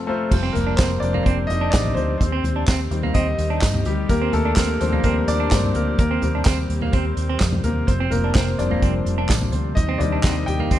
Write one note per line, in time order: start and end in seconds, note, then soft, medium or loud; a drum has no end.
0.00 0.27 F2 medium
0.00 0.27 C3 medium
0.00 0.07 A3 medium
0.00 0.08 C4 medium
0.00 0.08 F4 medium
0.00 0.07 A4 medium
0.00 0.34 F5 medium
0.00 0.33 A5 soft
0.07 0.30 A3 medium
0.07 0.27 C4 medium
0.07 0.27 F4 medium
0.07 0.29 A4 medium
0.07 0.27 C5 loud
0.07 0.30 A#5 medium
0.30 0.51 F1 medium
0.30 0.63 F3 soft
0.30 2.19 F3 medium
0.30 0.63 G3 medium
0.30 4.06 C4 medium
0.30 0.54 C4 medium
0.30 7.84 G4 medium
0.30 0.55 C5 medium
0.30 kick loud
0.30 crash medium
0.43 0.54 C4 medium
0.53 0.74 F1 medium
0.53 0.77 A#3 medium
0.53 0.78 A#4 medium
0.53 closed hi-hat medium
0.53 floor tom medium
0.67 0.78 D4 medium
0.76 0.98 F1 loud
0.76 0.90 C4 medium
0.76 1.01 C4 medium
0.76 1.02 C5 medium
0.76 kick loud
0.76 snare loud
0.76 clap medium
0.76 closed hi-hat loud
0.76 tambourine medium
1.00 1.21 F1 medium
1.00 1.25 D4 medium
1.00 1.26 D5 medium
1.00 closed hi-hat medium
1.14 1.26 A#3 medium
1.14 floor tom medium
1.23 1.45 F1 medium
1.23 1.37 C4 medium
1.23 1.49 C4 medium
1.23 1.46 C5 medium
1.23 kick loud
1.23 closed hi-hat medium
1.47 1.69 F1 medium
1.47 1.72 D#4 medium
1.47 1.73 D#5 loud
1.47 closed hi-hat medium
1.61 1.73 D4 medium
1.70 1.93 A1 medium
1.70 1.96 D4 medium
1.70 1.94 D5 medium
1.70 kick loud
1.70 snare loud
1.70 clap medium
1.70 closed hi-hat medium
1.70 tambourine loud
1.85 floor tom medium
1.95 2.16 D2 medium
1.95 2.19 C4 medium
1.95 2.16 C5 medium
1.95 closed hi-hat medium
2.18 2.40 D#2 loud
2.18 5.95 D#3 medium
2.18 2.88 C4 medium
2.18 2.86 C5 medium
2.18 kick loud
2.18 closed hi-hat medium
2.32 2.44 C4 medium
2.44 2.63 D#2 loud
2.44 closed hi-hat medium
2.44 floor tom medium
2.56 2.67 D4 medium
2.67 2.87 D#2 medium
2.67 2.79 C4 medium
2.67 kick loud
2.67 snare loud
2.67 clap loud
2.67 closed hi-hat loud
2.67 tambourine medium
2.91 3.11 D#2 medium
2.91 3.59 D#3 medium
2.91 3.59 G3 medium
2.91 3.59 C4 medium
2.91 closed hi-hat medium
3.03 3.15 A#3 medium
3.03 floor tom medium
3.14 3.34 D#2 medium
3.14 3.26 C4 medium
3.14 3.83 D#4 medium
3.14 3.88 D#5 loud
3.14 kick loud
3.14 closed hi-hat medium
3.38 3.58 D#2 medium
3.38 closed hi-hat medium
3.50 3.62 D4 medium
3.61 3.82 G2 medium
3.61 kick loud
3.61 snare loud
3.61 clap medium
3.61 closed hi-hat medium
3.61 tambourine medium
3.74 floor tom medium
3.85 4.05 D2 medium
3.85 4.09 G3 medium
3.85 4.08 G4 medium
3.85 closed hi-hat medium
4.09 4.29 D#2 loud
4.09 4.32 A#3 medium
4.09 5.97 D4 medium
4.09 4.34 A#4 medium
4.09 kick loud
4.09 closed hi-hat medium
4.22 4.33 C4 medium
4.33 4.53 D#2 medium
4.33 4.56 A3 medium
4.33 4.55 A4 medium
4.33 closed hi-hat medium
4.33 floor tom medium
4.45 4.57 D4 medium
4.56 4.76 D#2 loud
4.56 4.79 A#3 medium
4.56 4.68 C4 medium
4.56 4.81 A#4 medium
4.56 kick loud
4.56 snare loud
4.56 clap loud
4.56 closed hi-hat loud
4.56 tambourine medium
4.80 5.00 D#2 medium
4.80 5.94 F3 medium
4.80 5.95 G3 soft
4.80 4.87 C4 medium
4.80 5.27 D4 medium
4.80 4.86 C5 medium
4.80 closed hi-hat medium
4.92 5.04 A#3 medium
4.92 floor tom medium
5.03 5.23 D#2 medium
5.03 5.10 A#3 medium
5.03 5.16 C4 medium
5.03 5.09 A#4 medium
5.03 kick loud
5.03 closed hi-hat medium
5.28 5.47 D#2 medium
5.28 5.50 D4 medium
5.28 5.52 D5 loud
5.28 closed hi-hat medium
5.40 5.51 D4 medium
5.51 5.71 G2 medium
5.51 5.74 C4 medium
5.51 5.76 C5 medium
5.51 kick loud
5.51 snare loud
5.51 clap medium
5.51 closed hi-hat medium
5.51 tambourine medium
5.63 floor tom medium
5.75 5.94 D2 medium
5.75 5.98 A#3 medium
5.75 5.97 A#4 medium
5.75 closed hi-hat medium
5.99 6.18 D#2 loud
5.99 10.79 C3 medium
5.99 7.86 G3 medium
5.99 6.21 A#3 medium
5.99 6.66 A#4 medium
5.99 kick loud
5.99 closed hi-hat medium
6.11 6.22 C4 medium
6.22 6.42 D#2 medium
6.22 6.54 G3 medium
6.22 6.54 A#3 medium
6.22 6.55 C4 medium
6.22 closed hi-hat medium
6.22 floor tom medium
6.35 6.46 D4 medium
6.45 6.65 D#2 medium
6.45 6.57 C4 medium
6.45 kick loud
6.45 snare loud
6.45 clap loud
6.45 closed hi-hat loud
6.45 tambourine medium
6.70 6.89 D#2 loud
6.70 closed hi-hat medium
6.81 6.93 A#3 medium
6.81 floor tom medium
6.92 7.13 D#2 medium
6.92 7.05 C4 medium
6.92 7.61 C4 medium
6.92 7.66 C5 medium
6.92 kick loud
6.92 closed hi-hat medium
7.17 7.36 D#2 medium
7.17 closed hi-hat medium
7.29 7.40 C4 medium
7.40 7.60 F2 medium
7.40 kick loud
7.40 snare loud
7.40 clap medium
7.40 closed hi-hat medium
7.40 tambourine medium
7.52 floor tom medium
7.64 7.84 D#2 medium
7.64 7.87 A#3 medium
7.64 7.86 A#4 medium
7.64 closed hi-hat medium
7.64 floor tom medium
7.87 8.07 F1 loud
7.87 10.79 G3 medium
7.87 8.10 C4 medium
7.87 9.75 F4 medium
7.87 8.12 C5 medium
7.87 kick medium
7.87 closed hi-hat medium
8.00 8.11 C4 medium
8.11 8.31 F1 loud
8.11 8.34 A#3 medium
8.11 8.33 A#4 medium
8.11 closed hi-hat medium
8.11 floor tom medium
8.24 8.35 D4 medium
8.35 8.55 F1 loud
8.35 8.47 C4 medium
8.35 8.58 C4 medium
8.35 8.59 C5 medium
8.35 kick loud
8.35 snare loud
8.35 clap loud
8.35 closed hi-hat loud
8.35 tambourine medium
8.59 8.78 F1 medium
8.59 9.73 F3 soft
8.59 9.73 G3 soft
8.59 9.53 C4 medium
8.59 8.65 D4 medium
8.59 8.64 D5 medium
8.59 closed hi-hat medium
8.71 8.82 A#3 medium
8.71 floor tom medium
8.82 9.02 F1 medium
8.82 8.94 C4 medium
8.82 kick loud
8.82 closed hi-hat medium
9.06 9.25 F1 medium
9.06 closed hi-hat medium
9.18 9.29 D4 medium
9.29 9.49 A1 medium
9.29 kick loud
9.29 snare loud
9.29 clap medium
9.29 closed hi-hat medium
9.29 tambourine loud
9.41 floor tom medium
9.52 9.72 D2 medium
9.52 9.76 C4 medium
9.52 9.77 C5 medium
9.52 closed hi-hat medium
9.75 9.96 D#2 loud
9.75 10.79 D#3 medium
9.75 9.99 D#4 medium
9.75 9.98 D#5 medium
9.75 kick loud
9.75 closed hi-hat medium
9.89 10.00 C4 medium
9.98 10.20 D#2 medium
9.98 10.67 D#3 medium
9.98 10.68 G3 medium
9.98 10.68 C4 medium
9.98 10.23 D4 medium
9.98 10.21 D5 medium
9.98 closed hi-hat medium
9.98 floor tom medium
10.12 10.24 D4 medium
10.22 10.35 C4 medium
10.22 10.47 D#4 medium
10.22 10.48 D#5 medium
10.22 kick loud
10.22 snare loud
10.22 clap loud
10.22 closed hi-hat loud
10.22 tambourine medium
10.46 10.67 D#2 medium
10.46 10.70 G4 medium
10.46 10.69 G5 medium
10.46 closed hi-hat medium
10.59 10.71 A#3 medium
10.59 floor tom medium
10.71 10.79 D#2 medium
10.71 10.79 C4 medium
10.71 kick loud
10.71 closed hi-hat medium